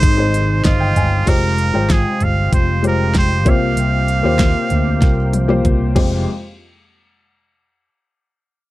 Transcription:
Already playing: felt piano G#2 D#4 G#4 C5, analog synth pad C3 D#3 G#3 D#4, muted trumpet C5
0.03 fingered electric bass G#1, kick, closed hi-hat
0.17 felt piano D#4 G#4 C5
0.34 closed hi-hat
0.64 fingered electric bass G1, muted trumpet F4, felt piano D#5, kick, snare, closed hi-hat
0.80 felt piano G5
0.96 fingered electric bass G1, felt piano G#5, closed hi-hat, floor tom
1.26 fingered electric bass F1, analog synth pad C3 G#3 F4 G5, felt piano G#3 F4 G4 C5, muted trumpet A#4, kick, closed hi-hat, crash
1.58 closed hi-hat
1.74 fingered electric bass G#1, felt piano G#3 F4 C5 G5
1.90 muted trumpet G#4, kick, snare, closed hi-hat
2.20 fingered electric bass G1, muted trumpet F5, closed hi-hat, floor tom
2.53 fingered electric bass F1, muted trumpet C5, kick, closed hi-hat
2.82 felt piano G#3 F4 G4 C5, closed hi-hat
2.87 muted trumpet A#4
3.14 muted trumpet C5, kick, snare, closed hi-hat
3.45 fingered electric bass C2, felt piano C3 A#3 F4 G4 C5, analog synth pad A#3, kick, closed hi-hat, floor tom
3.49 muted trumpet F5
3.77 fingered electric bass C2, closed hi-hat
4.08 closed hi-hat
4.23 fingered electric bass D#2, felt piano A#3 F4 G4 C5
4.39 kick, snare, closed hi-hat
4.70 fingered electric bass D2, closed hi-hat, floor tom
5.02 fingered electric bass C2, kick, snare, closed hi-hat
5.33 closed hi-hat, high tom
5.48 felt piano A#3 F4 G4 C5, high tom
5.65 fingered electric bass C2, kick, closed hi-hat, mid tom
5.95 fingered electric bass F1, felt piano F2 G#3 F4 G4 C5, analog synth pad C3 G#3 F4 G4, kick, crash

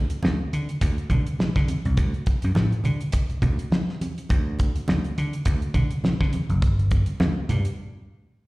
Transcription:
0.10 closed hi-hat
0.23 slap bass D2, snare, high conga
0.53 slap bass D3, closed hi-hat
0.69 closed hi-hat
0.81 slap bass D2, kick, closed hi-hat
0.98 closed hi-hat
1.10 slap bass D3, kick, closed hi-hat, low conga
1.27 closed hi-hat
1.39 snare, high conga
1.56 slap bass D3, kick, snare, closed hi-hat
1.68 closed hi-hat, high conga
1.85 slap bass C2, closed hi-hat
1.97 slap bass D2, kick, closed hi-hat, muted conga
2.14 closed hi-hat
2.26 kick, closed hi-hat, muted conga
2.42 slap bass F#2, closed hi-hat
2.55 slap bass A2, snare, high conga
2.72 closed hi-hat
2.84 slap bass D3, closed hi-hat, low conga
3.01 closed hi-hat
3.12 kick, closed hi-hat
3.29 muted slap bass stroke, closed hi-hat
3.42 slap bass D2, kick, closed hi-hat, low conga
3.59 closed hi-hat
3.72 snare, high conga
3.89 snare
4.01 closed hi-hat, high conga
4.18 closed hi-hat
4.29 slap bass D2, kick, closed hi-hat, muted conga
4.59 kick, closed hi-hat, muted conga
4.76 closed hi-hat
4.88 slap bass D2, snare, high conga
5.04 closed hi-hat
5.18 slap bass D3, closed hi-hat
5.33 closed hi-hat
5.45 slap bass D2, kick, closed hi-hat, muted conga
5.62 closed hi-hat
5.74 slap bass D3, kick, closed hi-hat, low conga
5.91 closed hi-hat
6.04 snare, high conga
6.21 slap bass D3, kick, snare
6.33 closed hi-hat, high conga
6.49 slap bass F#1, closed hi-hat
6.62 slap bass G1, kick, closed hi-hat, muted conga
6.79 closed hi-hat
6.91 kick, closed hi-hat, muted conga
7.06 closed hi-hat
7.20 slap bass D2, snare, high conga
7.49 slap bass G2, closed hi-hat, low conga
7.65 closed hi-hat

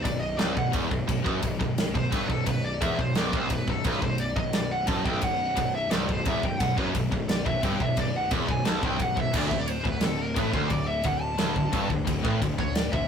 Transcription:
0.02 picked electric bass B0, distorted electric guitar B1, lead electric guitar D5, kick, ride
0.20 lead electric guitar D#5
0.38 picked electric bass C1, distorted electric guitar C2, lead electric guitar D5, snare, ride
0.55 picked electric bass B0, distorted electric guitar B1, lead electric guitar F#5, kick
0.72 picked electric bass E1, distorted electric guitar E2, kick, ride
0.90 picked electric bass B0, distorted electric guitar B1, kick
1.08 picked electric bass B0, distorted electric guitar B1, kick, ride
1.24 picked electric bass F#1, distorted electric guitar F#2, kick
1.42 picked electric bass B0, distorted electric guitar B1, kick, ride
1.59 picked electric bass B0, distorted electric guitar B1, kick
1.78 snare, ride
1.95 picked electric bass B0, distorted electric guitar B1, lead electric guitar C5, kick
2.12 picked electric bass G1, distorted electric guitar G2, lead electric guitar B4, kick, ride
2.29 picked electric bass B0, distorted electric guitar B1, lead electric guitar A4, kick
2.46 picked electric bass B0, distorted electric guitar B1, lead electric guitar B4, kick, ride
2.65 lead electric guitar D5
2.81 picked electric bass E1, distorted electric guitar E2, lead electric guitar E5, kick, ride
2.99 picked electric bass B0, distorted electric guitar B1, lead electric guitar C5, kick
3.15 picked electric bass B0, distorted electric guitar B1, lead electric guitar D5, snare, ride
3.33 picked electric bass C1, distorted electric guitar C2, lead electric guitar C5, kick
3.50 picked electric bass B0, distorted electric guitar B1, lead electric guitar B4, kick, ride
3.68 picked electric bass B0, distorted electric guitar B1, lead electric guitar A4, kick
3.84 picked electric bass B0, distorted electric guitar B1, lead electric guitar B4, kick, ride
4.02 picked electric bass B0, distorted electric guitar B1, lead electric guitar C5, kick
4.18 lead electric guitar D5, ride
4.36 picked electric bass B0, distorted electric guitar B1, lead electric guitar D#5, kick
4.53 picked electric bass B0, distorted electric guitar B1, lead electric guitar D5, snare, ride
4.71 lead electric guitar F#5
4.87 picked electric bass F#1, distorted electric guitar F#2, lead electric guitar A5, kick, ride
5.05 picked electric bass B0, distorted electric guitar B1, lead electric guitar G5, kick
5.21 picked electric bass B0, distorted electric guitar B1, lead electric guitar F#5, kick, ride
5.56 picked electric bass B0, distorted electric guitar B1, kick, ride
5.75 lead electric guitar E5
5.91 picked electric bass C1, distorted electric guitar C2, lead electric guitar D5, snare, ride
6.09 picked electric bass B0, distorted electric guitar B1, lead electric guitar C5, kick
6.25 picked electric bass E1, distorted electric guitar E2, lead electric guitar E5, kick, ride
6.43 picked electric bass B0, distorted electric guitar B1, lead electric guitar G5, kick
6.60 picked electric bass B0, distorted electric guitar B1, lead electric guitar F#5, kick, ride
6.77 picked electric bass F#1, distorted electric guitar F#2, lead electric guitar B4, kick
6.94 picked electric bass B0, distorted electric guitar B1, kick, ride
7.11 picked electric bass B0, distorted electric guitar B1, kick
7.29 lead electric guitar D5, snare, ride
7.45 picked electric bass B0, distorted electric guitar B1, lead electric guitar E5, kick
7.63 picked electric bass G1, distorted electric guitar G2, lead electric guitar G5, kick, ride
7.80 picked electric bass B0, distorted electric guitar B1, lead electric guitar E5, kick
7.97 picked electric bass B0, distorted electric guitar B1, lead electric guitar D5, kick, ride
8.16 lead electric guitar F#5
8.31 picked electric bass E1, distorted electric guitar E2, lead electric guitar B5, kick, ride
8.49 picked electric bass B0, distorted electric guitar B1, lead electric guitar G#5, kick
8.65 picked electric bass B0, distorted electric guitar B1, lead electric guitar A5, snare, ride
8.82 picked electric bass C1, distorted electric guitar C2, lead electric guitar G5, kick
8.98 picked electric bass B0, distorted electric guitar B1, kick, ride
9.02 lead electric guitar F#5
9.16 picked electric bass B0, distorted electric guitar B1, kick
9.20 lead electric guitar E5
9.33 picked electric bass D1, distorted electric guitar D2, lead electric guitar D5, kick, crash
9.46 distorted electric guitar D2, lead electric guitar E5
9.51 picked electric bass D1, kick
9.59 lead electric guitar D5
9.68 lead electric guitar C5, ride
9.84 picked electric bass D1, distorted electric guitar D2, lead electric guitar B4, kick
10.01 picked electric bass D1, distorted electric guitar D2, lead electric guitar A4, snare, ride
10.23 lead electric guitar A#4
10.36 picked electric bass A1, distorted electric guitar A2, lead electric guitar B4, kick, ride
10.53 picked electric bass D1, distorted electric guitar D2, lead electric guitar C5, kick
10.70 picked electric bass D1, distorted electric guitar D2, lead electric guitar D5, kick, ride
10.88 lead electric guitar E5
11.04 picked electric bass D1, distorted electric guitar D2, lead electric guitar F#5, kick, ride
11.21 lead electric guitar A5
11.38 picked electric bass D1, distorted electric guitar D2, snare, ride
11.56 picked electric bass D1, distorted electric guitar D2, kick
11.72 picked electric bass G1, distorted electric guitar G2, kick, ride
11.89 picked electric bass D1, distorted electric guitar D2, kick
12.05 picked electric bass D1, distorted electric guitar D2, kick, ride
12.22 picked electric bass A1, distorted electric guitar A2, kick
12.41 picked electric bass D1, distorted electric guitar D2, kick, ride
12.58 picked electric bass D1, distorted electric guitar D2, lead electric guitar C#5, kick
12.75 lead electric guitar D5, snare, ride
12.93 picked electric bass D1, distorted electric guitar D2, lead electric guitar E5, kick

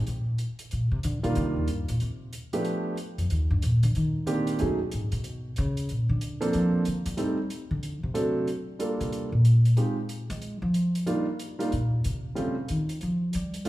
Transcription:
0.07 upright bass A#2, closed hi-hat
0.38 closed hi-hat
0.59 closed hi-hat
0.71 upright bass A#2, closed hi-hat
0.91 upright bass C3
1.03 upright bass D3, closed hi-hat
1.23 upright bass B2, grand piano D#3 G3 A#3 D4 F4, closed hi-hat
1.35 upright bass C3, closed hi-hat
1.56 upright bass D#2
1.68 upright bass G2, closed hi-hat
1.88 upright bass A#2, closed hi-hat
2.00 upright bass C3, closed hi-hat
2.33 closed hi-hat
2.53 grand piano F3 A3 B3 D4 G4, closed hi-hat
2.65 closed hi-hat
2.97 closed hi-hat
3.18 upright bass F2, closed hi-hat
3.30 upright bass D#2, closed hi-hat
3.50 upright bass G2
3.62 upright bass A#2, closed hi-hat
3.83 upright bass D3, closed hi-hat
3.95 upright bass D#3, closed hi-hat
4.26 grand piano D#3 A#3 C4 D4 G4, closed hi-hat
4.47 closed hi-hat
4.59 upright bass B2, grand piano F#3 A3 C#4 D#4 G#4, closed hi-hat
4.91 upright bass G#2, closed hi-hat
5.12 upright bass B2, closed hi-hat
5.24 closed hi-hat
5.56 upright bass C#3, closed hi-hat
5.77 closed hi-hat
5.89 upright bass A#2, closed hi-hat
6.09 upright bass D3
6.21 closed hi-hat
6.41 grand piano F3 A#3 C4 D4 A4, closed hi-hat
6.53 upright bass F3, closed hi-hat
6.85 upright bass D3, closed hi-hat
7.06 upright bass G3, closed hi-hat
7.17 grand piano G3 A3 C4 D#4 A4, closed hi-hat
7.50 closed hi-hat
7.71 upright bass D3
7.83 closed hi-hat
8.03 upright bass C3
8.14 grand piano F#3 A3 C4 D4 A4, closed hi-hat
8.47 closed hi-hat
8.79 grand piano G3 A#3 D4 F4 A4, closed hi-hat
9.00 upright bass C3, closed hi-hat
9.12 closed hi-hat
9.32 upright bass A#2
9.45 closed hi-hat
9.65 closed hi-hat
9.77 grand piano G#3 C4 D#4 F4 G4, closed hi-hat
10.09 closed hi-hat
10.30 upright bass G#3, closed hi-hat
10.41 closed hi-hat
10.62 upright bass F3
10.74 closed hi-hat
10.95 closed hi-hat
11.06 grand piano G3 A#3 D4 D#4 F4, closed hi-hat
11.39 closed hi-hat
11.59 grand piano G3 A#3 D4 D#4 F4, closed hi-hat
11.72 upright bass A#2, closed hi-hat
12.04 upright bass C3, closed hi-hat
12.35 upright bass C#3, grand piano G3 A3 C4 C#4 F4, closed hi-hat
12.69 upright bass D#3, closed hi-hat
12.89 closed hi-hat
13.01 upright bass F3, closed hi-hat
13.33 upright bass G3, closed hi-hat
13.54 closed hi-hat
13.65 grand piano F3 A3 C4 D4 F4, closed hi-hat

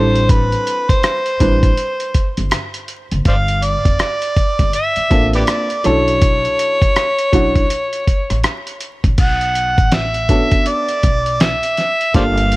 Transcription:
Already playing: upright bass A1, upright piano G3 C4 D4 E4 A4, harmonica C5
0.15 closed hi-hat
0.29 harmonica B4, kick, closed hi-hat
0.52 closed hi-hat
0.67 closed hi-hat
0.89 harmonica C5, kick, closed hi-hat
1.03 cross-stick, closed hi-hat
1.26 closed hi-hat
1.40 upright bass A1, upright piano G3 C4 D4 E4 B4, kick, closed hi-hat
1.63 kick, closed hi-hat
1.78 closed hi-hat
2.00 closed hi-hat
2.14 kick, closed hi-hat
2.37 upright bass G1, closed hi-hat
2.51 cross-stick, closed hi-hat
2.74 closed hi-hat
2.88 closed hi-hat
3.11 upright bass F#1, closed hi-hat
3.25 upright bass G1, harmonica C5 D5 F5, kick, closed hi-hat
3.48 closed hi-hat
3.62 harmonica D5, closed hi-hat
3.85 upright bass F1, kick, closed hi-hat
3.99 cross-stick, closed hi-hat
4.22 closed hi-hat
4.36 kick, closed hi-hat
4.59 upright bass G1, kick, closed hi-hat
4.73 harmonica E5, closed hi-hat
4.96 muted upright bass stroke, closed hi-hat
5.10 upright bass A1, upright piano A#3 C4 D4 F4 A4, kick, closed hi-hat
5.33 harmonica G4 B4 D5, closed hi-hat
5.47 cross-stick, closed hi-hat
5.70 closed hi-hat
5.84 upright bass B1, upright piano F#3 C#4 D4 E4 A4, harmonica C#5, cross-stick, closed hi-hat
6.08 closed hi-hat
6.21 kick, closed hi-hat
6.45 closed hi-hat
6.59 closed hi-hat
6.82 kick, closed hi-hat
6.96 cross-stick, closed hi-hat
7.19 closed hi-hat
7.32 upright bass B1, upright piano F#3 C#4 D4 E4 F#4, kick, closed hi-hat
7.56 kick, closed hi-hat
7.70 closed hi-hat
7.93 closed hi-hat
8.07 kick, closed hi-hat
8.30 upright bass A1, cross-stick, closed hi-hat
8.44 cross-stick, closed hi-hat
8.67 closed hi-hat
8.81 closed hi-hat
9.04 upright bass A#1, kick, closed hi-hat
9.18 upright bass B1, harmonica F#5, kick, closed hi-hat, crash
9.41 closed hi-hat
9.55 closed hi-hat
9.78 upright bass A1, kick, closed hi-hat
9.92 harmonica E5, snare, closed hi-hat
10.14 closed hi-hat
10.29 upright piano B3 C#4 D4 F#4 A4, kick, closed hi-hat
10.51 kick, closed hi-hat
10.66 harmonica D5, closed hi-hat
10.89 closed hi-hat
11.03 upright bass B1, kick, closed hi-hat
11.26 closed hi-hat
11.40 harmonica E5, snare, closed hi-hat
11.63 closed hi-hat
11.77 snare, closed hi-hat
12.01 closed hi-hat
12.14 upright bass G1, upright piano A#3 D4 F4 G4 A4, harmonica C5 D5 F5, kick, closed hi-hat
12.38 closed hi-hat
12.52 closed hi-hat

